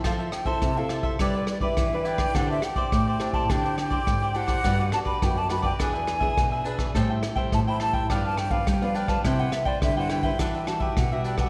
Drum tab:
HH |xxx-x-x-xxx-x-x-|x-xxx-x-xxxxxxxx|xxx-x-x-xxx-x-x-|x-xxx-x-xxxxxxxx|
SD |r-r-r-r-r-r-r--r|r-r-r-r-r-r-r--r|r-r-r-r-r-r-r--r|r-r-r-r-r-r-r--r|
BD |o--oo--oo--oo--o|o--oo--oo--oo--o|o--oo--oo--oo--o|o--oo--oo--oo--o|

HH |xxx-x-x-xxx-x-x-|
SD |r-r-r-r-r-r-r--r|
BD |o--oo--oo--oo--o|